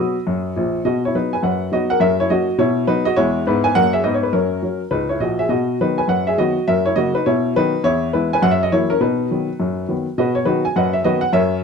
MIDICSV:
0, 0, Header, 1, 2, 480
1, 0, Start_track
1, 0, Key_signature, 5, "major"
1, 0, Tempo, 291545
1, 1404, Time_signature, 4, 2, 24, 8
1, 19159, End_track
2, 0, Start_track
2, 0, Title_t, "Upright piano"
2, 0, Program_c, 0, 0
2, 0, Note_on_c, 0, 54, 37
2, 0, Note_on_c, 0, 59, 44
2, 0, Note_on_c, 0, 66, 45
2, 0, Note_on_c, 0, 75, 62
2, 0, Note_on_c, 0, 83, 58
2, 0, Note_on_c, 0, 87, 73
2, 235, Note_off_c, 0, 54, 0
2, 240, Note_off_c, 0, 59, 0
2, 249, Note_off_c, 0, 66, 0
2, 440, Note_on_c, 0, 42, 60
2, 850, Note_off_c, 0, 42, 0
2, 924, Note_on_c, 0, 46, 61
2, 937, Note_on_c, 0, 34, 63
2, 972, Note_off_c, 0, 87, 0
2, 1174, Note_off_c, 0, 83, 0
2, 1181, Note_off_c, 0, 75, 0
2, 1308, Note_off_c, 0, 46, 0
2, 1316, Note_off_c, 0, 34, 0
2, 1397, Note_on_c, 0, 47, 59
2, 1398, Note_on_c, 0, 75, 72
2, 1422, Note_on_c, 0, 66, 53
2, 1658, Note_off_c, 0, 75, 0
2, 1695, Note_off_c, 0, 66, 0
2, 1732, Note_on_c, 0, 73, 69
2, 1760, Note_on_c, 0, 64, 52
2, 1808, Note_off_c, 0, 47, 0
2, 1872, Note_off_c, 0, 73, 0
2, 1891, Note_on_c, 0, 54, 41
2, 1892, Note_on_c, 0, 59, 41
2, 1897, Note_on_c, 0, 71, 69
2, 1900, Note_off_c, 0, 64, 0
2, 1910, Note_on_c, 0, 63, 55
2, 2149, Note_off_c, 0, 71, 0
2, 2153, Note_off_c, 0, 54, 0
2, 2154, Note_off_c, 0, 59, 0
2, 2180, Note_off_c, 0, 63, 0
2, 2190, Note_on_c, 0, 80, 73
2, 2210, Note_on_c, 0, 71, 51
2, 2339, Note_off_c, 0, 80, 0
2, 2349, Note_on_c, 0, 42, 59
2, 2353, Note_off_c, 0, 71, 0
2, 2362, Note_on_c, 0, 78, 69
2, 2378, Note_on_c, 0, 71, 52
2, 2763, Note_off_c, 0, 42, 0
2, 2771, Note_off_c, 0, 78, 0
2, 2818, Note_off_c, 0, 71, 0
2, 2826, Note_on_c, 0, 54, 37
2, 2839, Note_on_c, 0, 63, 42
2, 2843, Note_on_c, 0, 59, 46
2, 2844, Note_on_c, 0, 75, 83
2, 2846, Note_on_c, 0, 66, 63
2, 3095, Note_off_c, 0, 54, 0
2, 3101, Note_off_c, 0, 75, 0
2, 3105, Note_off_c, 0, 63, 0
2, 3108, Note_off_c, 0, 59, 0
2, 3127, Note_off_c, 0, 66, 0
2, 3129, Note_on_c, 0, 78, 91
2, 3149, Note_on_c, 0, 70, 64
2, 3288, Note_off_c, 0, 78, 0
2, 3293, Note_on_c, 0, 42, 70
2, 3294, Note_off_c, 0, 70, 0
2, 3303, Note_on_c, 0, 76, 92
2, 3318, Note_on_c, 0, 70, 69
2, 3570, Note_off_c, 0, 76, 0
2, 3603, Note_off_c, 0, 70, 0
2, 3624, Note_on_c, 0, 73, 85
2, 3638, Note_on_c, 0, 64, 64
2, 3714, Note_off_c, 0, 42, 0
2, 3776, Note_off_c, 0, 73, 0
2, 3788, Note_on_c, 0, 75, 82
2, 3791, Note_on_c, 0, 54, 42
2, 3798, Note_off_c, 0, 64, 0
2, 3798, Note_on_c, 0, 58, 39
2, 3802, Note_on_c, 0, 61, 49
2, 3811, Note_on_c, 0, 66, 66
2, 4059, Note_off_c, 0, 54, 0
2, 4064, Note_off_c, 0, 58, 0
2, 4067, Note_off_c, 0, 61, 0
2, 4203, Note_off_c, 0, 75, 0
2, 4253, Note_on_c, 0, 47, 81
2, 4254, Note_off_c, 0, 66, 0
2, 4261, Note_on_c, 0, 73, 91
2, 4279, Note_on_c, 0, 64, 69
2, 4675, Note_off_c, 0, 47, 0
2, 4680, Note_off_c, 0, 73, 0
2, 4728, Note_on_c, 0, 59, 57
2, 4729, Note_off_c, 0, 64, 0
2, 4729, Note_on_c, 0, 54, 48
2, 4733, Note_on_c, 0, 71, 95
2, 4752, Note_on_c, 0, 63, 74
2, 5002, Note_off_c, 0, 59, 0
2, 5003, Note_off_c, 0, 54, 0
2, 5004, Note_off_c, 0, 71, 0
2, 5028, Note_on_c, 0, 75, 96
2, 5040, Note_off_c, 0, 63, 0
2, 5048, Note_on_c, 0, 66, 71
2, 5196, Note_off_c, 0, 75, 0
2, 5211, Note_on_c, 0, 73, 95
2, 5220, Note_on_c, 0, 40, 69
2, 5222, Note_off_c, 0, 66, 0
2, 5230, Note_on_c, 0, 64, 77
2, 5243, Note_on_c, 0, 56, 72
2, 5615, Note_off_c, 0, 40, 0
2, 5629, Note_off_c, 0, 56, 0
2, 5634, Note_off_c, 0, 73, 0
2, 5684, Note_off_c, 0, 64, 0
2, 5709, Note_on_c, 0, 44, 78
2, 5715, Note_on_c, 0, 71, 76
2, 5733, Note_on_c, 0, 64, 55
2, 5739, Note_on_c, 0, 59, 74
2, 5978, Note_off_c, 0, 71, 0
2, 5993, Note_on_c, 0, 80, 97
2, 6012, Note_off_c, 0, 64, 0
2, 6014, Note_on_c, 0, 71, 69
2, 6100, Note_off_c, 0, 44, 0
2, 6118, Note_off_c, 0, 59, 0
2, 6159, Note_off_c, 0, 80, 0
2, 6177, Note_on_c, 0, 78, 110
2, 6183, Note_on_c, 0, 42, 72
2, 6186, Note_off_c, 0, 71, 0
2, 6194, Note_on_c, 0, 70, 82
2, 6205, Note_on_c, 0, 58, 67
2, 6448, Note_off_c, 0, 78, 0
2, 6472, Note_on_c, 0, 76, 82
2, 6482, Note_off_c, 0, 70, 0
2, 6482, Note_on_c, 0, 68, 57
2, 6577, Note_off_c, 0, 42, 0
2, 6590, Note_off_c, 0, 58, 0
2, 6639, Note_off_c, 0, 76, 0
2, 6644, Note_on_c, 0, 44, 66
2, 6648, Note_on_c, 0, 75, 82
2, 6660, Note_off_c, 0, 68, 0
2, 6683, Note_on_c, 0, 59, 64
2, 6801, Note_off_c, 0, 75, 0
2, 6817, Note_on_c, 0, 73, 69
2, 6966, Note_off_c, 0, 73, 0
2, 6969, Note_on_c, 0, 71, 68
2, 7046, Note_off_c, 0, 44, 0
2, 7069, Note_off_c, 0, 59, 0
2, 7121, Note_off_c, 0, 71, 0
2, 7127, Note_on_c, 0, 42, 56
2, 7127, Note_on_c, 0, 70, 76
2, 7150, Note_on_c, 0, 61, 55
2, 7553, Note_off_c, 0, 42, 0
2, 7605, Note_off_c, 0, 61, 0
2, 7613, Note_on_c, 0, 54, 39
2, 7629, Note_on_c, 0, 61, 41
2, 7887, Note_off_c, 0, 54, 0
2, 7899, Note_off_c, 0, 61, 0
2, 7961, Note_off_c, 0, 70, 0
2, 8081, Note_on_c, 0, 37, 59
2, 8081, Note_on_c, 0, 71, 75
2, 8102, Note_on_c, 0, 63, 52
2, 8359, Note_off_c, 0, 71, 0
2, 8384, Note_on_c, 0, 73, 63
2, 8396, Note_off_c, 0, 63, 0
2, 8413, Note_on_c, 0, 64, 47
2, 8510, Note_off_c, 0, 37, 0
2, 8555, Note_off_c, 0, 73, 0
2, 8558, Note_on_c, 0, 34, 55
2, 8562, Note_on_c, 0, 46, 52
2, 8568, Note_on_c, 0, 75, 75
2, 8587, Note_off_c, 0, 64, 0
2, 8588, Note_on_c, 0, 66, 52
2, 8843, Note_off_c, 0, 75, 0
2, 8875, Note_on_c, 0, 76, 74
2, 8880, Note_off_c, 0, 66, 0
2, 8895, Note_on_c, 0, 68, 54
2, 8962, Note_off_c, 0, 34, 0
2, 8965, Note_off_c, 0, 46, 0
2, 9037, Note_on_c, 0, 47, 61
2, 9041, Note_off_c, 0, 76, 0
2, 9044, Note_on_c, 0, 75, 75
2, 9059, Note_on_c, 0, 66, 57
2, 9068, Note_off_c, 0, 68, 0
2, 9468, Note_off_c, 0, 47, 0
2, 9472, Note_off_c, 0, 75, 0
2, 9520, Note_off_c, 0, 66, 0
2, 9559, Note_on_c, 0, 51, 41
2, 9562, Note_on_c, 0, 54, 39
2, 9566, Note_on_c, 0, 71, 75
2, 9575, Note_on_c, 0, 59, 42
2, 9579, Note_on_c, 0, 63, 56
2, 9825, Note_off_c, 0, 71, 0
2, 9826, Note_off_c, 0, 51, 0
2, 9828, Note_off_c, 0, 54, 0
2, 9838, Note_off_c, 0, 59, 0
2, 9844, Note_on_c, 0, 80, 73
2, 9857, Note_off_c, 0, 63, 0
2, 9859, Note_on_c, 0, 71, 59
2, 10006, Note_off_c, 0, 71, 0
2, 10006, Note_on_c, 0, 42, 55
2, 10007, Note_off_c, 0, 80, 0
2, 10025, Note_on_c, 0, 78, 81
2, 10031, Note_on_c, 0, 71, 58
2, 10293, Note_off_c, 0, 78, 0
2, 10322, Note_off_c, 0, 71, 0
2, 10322, Note_on_c, 0, 76, 78
2, 10346, Note_on_c, 0, 68, 62
2, 10433, Note_off_c, 0, 42, 0
2, 10486, Note_off_c, 0, 76, 0
2, 10501, Note_on_c, 0, 54, 43
2, 10502, Note_on_c, 0, 51, 41
2, 10509, Note_on_c, 0, 75, 88
2, 10514, Note_off_c, 0, 68, 0
2, 10515, Note_on_c, 0, 59, 49
2, 10525, Note_on_c, 0, 66, 63
2, 10773, Note_off_c, 0, 54, 0
2, 10774, Note_off_c, 0, 51, 0
2, 10783, Note_off_c, 0, 59, 0
2, 10926, Note_off_c, 0, 75, 0
2, 10974, Note_off_c, 0, 66, 0
2, 10991, Note_on_c, 0, 76, 87
2, 10996, Note_on_c, 0, 42, 64
2, 11013, Note_on_c, 0, 70, 65
2, 11257, Note_off_c, 0, 76, 0
2, 11287, Note_on_c, 0, 73, 83
2, 11294, Note_off_c, 0, 70, 0
2, 11301, Note_on_c, 0, 64, 59
2, 11410, Note_off_c, 0, 42, 0
2, 11449, Note_off_c, 0, 73, 0
2, 11452, Note_on_c, 0, 49, 42
2, 11453, Note_on_c, 0, 75, 92
2, 11462, Note_on_c, 0, 54, 46
2, 11471, Note_off_c, 0, 64, 0
2, 11471, Note_on_c, 0, 58, 49
2, 11488, Note_on_c, 0, 66, 65
2, 11726, Note_off_c, 0, 75, 0
2, 11727, Note_off_c, 0, 49, 0
2, 11733, Note_off_c, 0, 54, 0
2, 11740, Note_off_c, 0, 58, 0
2, 11768, Note_on_c, 0, 71, 82
2, 11771, Note_off_c, 0, 66, 0
2, 11788, Note_on_c, 0, 63, 56
2, 11929, Note_off_c, 0, 71, 0
2, 11954, Note_on_c, 0, 73, 85
2, 11955, Note_off_c, 0, 63, 0
2, 11958, Note_on_c, 0, 47, 71
2, 11980, Note_on_c, 0, 64, 65
2, 12369, Note_off_c, 0, 73, 0
2, 12371, Note_off_c, 0, 47, 0
2, 12422, Note_off_c, 0, 64, 0
2, 12444, Note_on_c, 0, 51, 50
2, 12452, Note_on_c, 0, 71, 96
2, 12453, Note_on_c, 0, 59, 46
2, 12456, Note_on_c, 0, 54, 46
2, 12469, Note_on_c, 0, 63, 63
2, 12710, Note_off_c, 0, 51, 0
2, 12716, Note_off_c, 0, 59, 0
2, 12718, Note_off_c, 0, 54, 0
2, 12859, Note_off_c, 0, 71, 0
2, 12900, Note_on_c, 0, 40, 76
2, 12906, Note_off_c, 0, 63, 0
2, 12909, Note_on_c, 0, 73, 102
2, 12920, Note_on_c, 0, 64, 69
2, 13320, Note_off_c, 0, 40, 0
2, 13326, Note_off_c, 0, 73, 0
2, 13371, Note_off_c, 0, 64, 0
2, 13391, Note_on_c, 0, 71, 79
2, 13396, Note_on_c, 0, 52, 48
2, 13402, Note_on_c, 0, 56, 51
2, 13405, Note_on_c, 0, 59, 47
2, 13421, Note_on_c, 0, 64, 63
2, 13656, Note_off_c, 0, 71, 0
2, 13664, Note_off_c, 0, 52, 0
2, 13668, Note_off_c, 0, 56, 0
2, 13670, Note_off_c, 0, 59, 0
2, 13697, Note_off_c, 0, 64, 0
2, 13719, Note_on_c, 0, 80, 91
2, 13742, Note_on_c, 0, 71, 72
2, 13867, Note_off_c, 0, 80, 0
2, 13867, Note_on_c, 0, 42, 88
2, 13873, Note_on_c, 0, 78, 102
2, 13892, Note_off_c, 0, 71, 0
2, 14015, Note_on_c, 0, 76, 87
2, 14016, Note_off_c, 0, 78, 0
2, 14166, Note_off_c, 0, 76, 0
2, 14207, Note_on_c, 0, 75, 88
2, 14284, Note_off_c, 0, 42, 0
2, 14344, Note_off_c, 0, 75, 0
2, 14354, Note_on_c, 0, 52, 49
2, 14359, Note_on_c, 0, 54, 51
2, 14362, Note_on_c, 0, 73, 93
2, 14377, Note_on_c, 0, 64, 70
2, 14380, Note_on_c, 0, 58, 49
2, 14622, Note_off_c, 0, 52, 0
2, 14622, Note_off_c, 0, 73, 0
2, 14625, Note_off_c, 0, 54, 0
2, 14641, Note_off_c, 0, 58, 0
2, 14651, Note_on_c, 0, 70, 89
2, 14655, Note_off_c, 0, 64, 0
2, 14670, Note_on_c, 0, 61, 63
2, 14810, Note_off_c, 0, 70, 0
2, 14825, Note_on_c, 0, 47, 64
2, 14830, Note_on_c, 0, 71, 74
2, 14835, Note_off_c, 0, 61, 0
2, 14843, Note_on_c, 0, 63, 53
2, 15243, Note_off_c, 0, 47, 0
2, 15326, Note_on_c, 0, 51, 40
2, 15329, Note_on_c, 0, 54, 39
2, 15342, Note_on_c, 0, 59, 43
2, 15590, Note_off_c, 0, 51, 0
2, 15592, Note_off_c, 0, 54, 0
2, 15602, Note_off_c, 0, 59, 0
2, 15799, Note_on_c, 0, 42, 55
2, 16210, Note_off_c, 0, 42, 0
2, 16274, Note_on_c, 0, 51, 39
2, 16276, Note_on_c, 0, 54, 38
2, 16295, Note_on_c, 0, 59, 44
2, 16318, Note_off_c, 0, 71, 0
2, 16521, Note_off_c, 0, 63, 0
2, 16541, Note_off_c, 0, 51, 0
2, 16543, Note_off_c, 0, 54, 0
2, 16556, Note_off_c, 0, 59, 0
2, 16757, Note_on_c, 0, 47, 61
2, 16763, Note_on_c, 0, 75, 80
2, 16781, Note_on_c, 0, 66, 60
2, 16788, Note_on_c, 0, 71, 66
2, 17022, Note_off_c, 0, 75, 0
2, 17041, Note_on_c, 0, 73, 77
2, 17056, Note_off_c, 0, 66, 0
2, 17059, Note_off_c, 0, 71, 0
2, 17169, Note_off_c, 0, 47, 0
2, 17203, Note_off_c, 0, 73, 0
2, 17207, Note_on_c, 0, 51, 38
2, 17213, Note_on_c, 0, 71, 78
2, 17219, Note_on_c, 0, 54, 38
2, 17223, Note_on_c, 0, 59, 39
2, 17230, Note_on_c, 0, 66, 64
2, 17236, Note_on_c, 0, 63, 57
2, 17481, Note_off_c, 0, 51, 0
2, 17484, Note_off_c, 0, 71, 0
2, 17490, Note_off_c, 0, 54, 0
2, 17493, Note_off_c, 0, 59, 0
2, 17519, Note_off_c, 0, 66, 0
2, 17522, Note_off_c, 0, 63, 0
2, 17532, Note_on_c, 0, 80, 78
2, 17689, Note_off_c, 0, 80, 0
2, 17714, Note_on_c, 0, 42, 67
2, 17722, Note_on_c, 0, 78, 79
2, 17733, Note_on_c, 0, 75, 62
2, 17743, Note_on_c, 0, 71, 63
2, 17981, Note_off_c, 0, 78, 0
2, 18001, Note_on_c, 0, 76, 78
2, 18011, Note_off_c, 0, 75, 0
2, 18016, Note_off_c, 0, 71, 0
2, 18126, Note_off_c, 0, 42, 0
2, 18163, Note_off_c, 0, 76, 0
2, 18170, Note_on_c, 0, 51, 45
2, 18184, Note_on_c, 0, 75, 85
2, 18190, Note_on_c, 0, 59, 51
2, 18194, Note_on_c, 0, 54, 47
2, 18199, Note_on_c, 0, 71, 74
2, 18207, Note_on_c, 0, 66, 63
2, 18443, Note_off_c, 0, 51, 0
2, 18450, Note_off_c, 0, 75, 0
2, 18457, Note_off_c, 0, 59, 0
2, 18458, Note_on_c, 0, 78, 92
2, 18460, Note_off_c, 0, 54, 0
2, 18483, Note_off_c, 0, 71, 0
2, 18487, Note_off_c, 0, 66, 0
2, 18629, Note_off_c, 0, 78, 0
2, 18650, Note_on_c, 0, 42, 76
2, 18656, Note_on_c, 0, 76, 97
2, 18670, Note_on_c, 0, 73, 68
2, 18675, Note_on_c, 0, 70, 64
2, 19072, Note_off_c, 0, 42, 0
2, 19075, Note_off_c, 0, 76, 0
2, 19122, Note_off_c, 0, 73, 0
2, 19125, Note_off_c, 0, 70, 0
2, 19159, End_track
0, 0, End_of_file